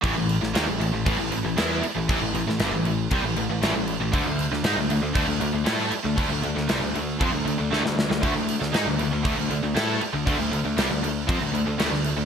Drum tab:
CC |x-x-x-x-x-x-x-x-|x-x-x-x-x-x-x-x-|x-x-x-x-x-x-x-x-|x-x-x-x-x-x-----|
SD |---oo-------o---|---oo-------o---|---oo-------oo--|---oo-------oooo|
BD |o-------o-------|o-------o-------|o-------o-------|o-------o-------|

CC |x-x-x-x-x-x-x-x-|x-x-x-x-x-x-x-x-|
SD |---oo-------o---|----o-------oo--|
BD |o-------o-------|o-------o-------|